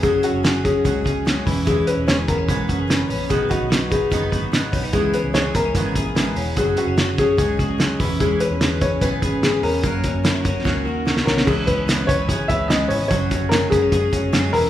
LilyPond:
<<
  \new Staff \with { instrumentName = "Upright piano" } { \time 4/4 \key fis \mixolydian \tempo 4 = 147 gis'8 fis'4 gis'2 r8 | gis'8 b'8 cis''8 ais'2 r8 | gis'8 fis'4 gis'2 r8 | gis'8 b'8 cis''8 ais'2 r8 |
gis'8 fis'4 gis'2 r8 | gis'8 b'4 cis''8 b'4 gis'8 ais'8~ | ais'2. r8 ais'8 | gis'8 b'4 cis''4 e''8 dis''8 cis''8 |
cis''4 ais'8 gis'2 ais'8 | }
  \new Staff \with { instrumentName = "Steel-string acoustic guitar" } { \time 4/4 \key fis \mixolydian <fis cis' fis' gis'>8 <cis' fis' gis'>8 <fis cis' fis' gis'>8 <cis' fis' gis'>8 <fis cis' fis' gis'>8 <cis' fis' gis'>8 <fis cis' fis' gis'>8 <cis' gis' b'>8 | <e gis cis' gis' b'>8 <cis' gis' b'>8 <gis cis' gis' b'>8 <cis' gis' b'>8 <e gis cis' gis' b'>8 <cis' gis' b'>8 <gis cis' gis' b'>8 <cis' gis' b'>8 | <b, dis fis b dis' b'>8 <fis b dis' b'>8 <fis b dis' b'>8 <fis b dis' b'>8 <b, dis fis b dis' b'>8 <fis b dis' b'>8 <fis b dis' b'>8 <fis b dis' b'>8 | <cis gis b e' gis'>8 <b e' gis'>8 <gis b e' gis'>8 <b e' gis'>8 <cis gis b e' gis'>8 <b e' gis'>8 <gis b e' gis'>8 <b e' gis'>8 |
<fis cis' fis' gis'>8 <cis' fis' gis'>8 <fis cis' fis' gis'>8 <cis' fis' gis'>8 <fis cis' fis' gis'>8 <cis' fis' gis'>8 <fis cis' fis' gis'>8 <cis' gis' b'>8 | <e gis cis' gis' b'>8 <cis' gis' b'>8 <gis cis' gis' b'>8 <cis' gis' b'>8 <e gis cis' gis' b'>8 <cis' gis' b'>8 <gis cis' gis' b'>8 <cis' gis' b'>8 | <fis cis' fis' ais'>8 <cis' fis' ais'>8 <fis cis' fis' ais'>8 <cis' fis' ais'>8 <fis cis' fis' ais'>8 <cis' fis' ais'>8 <fis cis' fis' ais'>8 <cis' fis' ais'>8 | <cis gis b e' b'>8 <b e' b'>8 <cis gis b e' b'>8 <b e' b'>8 <gis b e' b'>8 <b e' b'>8 <cis gis b e' b'>8 <b e' b'>8 |
<fis cis' fis' gis'>8 <cis' fis' gis'>8 <fis cis' fis' gis'>8 <cis' fis' gis'>8 <fis cis' fis' gis'>8 <cis' fis' gis'>8 <fis cis' fis' gis'>8 <cis' gis' b'>8 | }
  \new Staff \with { instrumentName = "Clean electric guitar" } { \time 4/4 \key fis \mixolydian fis8 cis'8 gis'8 cis'8 gis8 gis'8 gis8 e8 | e8 cis'8 gis'8 b16 cis'16 b8 fis'16 gis'16 b8 cis'8 | fis8 dis'8 fis'8 dis'8 b8 fis'8 b8 cis'16 dis'16 | e8 cis'8 gis'8 b16 cis'16 b8 gis'8 b8 cis'8 |
fis8 b16 cis'16 fis'16 gis'16 cis'8 gis8 fis'16 gis'16 gis8 e8 | e8 cis'8 gis'8 cis'8 b8 gis'8 b8 cis'8 | ais8 cis'8 e'16 fis'16 cis'8 ais8 fis'8 ais8 cis'8 | e8 cis'8 b8 b16 cis'16 gis'8 cis'8 b8 cis'8 |
fis8 cis'8 gis8 b16 cis'16 gis'8 cis'8 gis8 e8 | }
  \new Staff \with { instrumentName = "Picked electric bass" } { \clef bass \time 4/4 \key fis \mixolydian fis,,8 r16 fis,,4~ fis,,16 cis,8 cis,4 e,,8~ | e,,8 r16 e,,4~ e,,16 b,,8 fis,,4 ais,,8 | b,,8 r16 b,,4~ b,,16 fis,,8 gis,,4 b,,8 | cis,8 r16 cis,4~ cis,16 gis,,8 ais,,4 e,,8 |
fis,,8 r16 fis,,4~ fis,,16 cis,8 cis,4 e,,8~ | e,,8 r16 e,4~ e,16 b,,8 gis,,4 e,8 | fis,8 r16 fis,4~ fis,16 cis,8 dis,4 b,,8 | cis,8 cis,4 cis,8 cis8 cis,8 cis,8 gis,,8 |
fis,,8 fis,,4 fis,,8 fis,8 fis,,8 fis,8 e,,8 | }
  \new DrumStaff \with { instrumentName = "Drums" } \drummode { \time 4/4 <hh bd>8 hh8 <hh sn>8 <hh bd>8 <hh bd>8 <hh bd>8 <hh sn>8 <hho bd>8 | <hh bd>8 hh8 <hh sn>8 <hh bd>8 <hh bd>8 <hh bd>8 <hh sn>8 hho8 | <hh bd>8 <hh bd>8 <hh sn>8 <hh bd>8 <hh bd>8 <hh bd>8 <hh sn>8 <hho bd>8 | <hh bd>8 hh8 <hh sn>8 <hh bd>8 <hh bd>8 <hh bd>8 <hh sn>8 hho8 |
<hh bd>8 hh8 <hh sn>8 <hh bd>8 <hh bd>8 <hh bd>8 <hh sn>8 <hho bd>8 | <hh bd>8 hh8 <hh sn>8 <hh bd>8 <hh bd>8 <hh bd>8 <hh sn>8 hho8 | <hh bd>8 <hh bd>8 <hh sn>8 <hh bd>8 <bd sn>4 sn16 sn16 sn16 sn16 | <cymc bd>8 <hh bd>8 <hh sn>8 <hh bd>8 <hh bd>8 <hh bd>8 <hh sn>8 hho8 |
<hh bd>8 <hh bd>8 <hh sn>8 <hh bd>8 <hh bd>8 <hh bd>8 <hh sn>8 hho8 | }
>>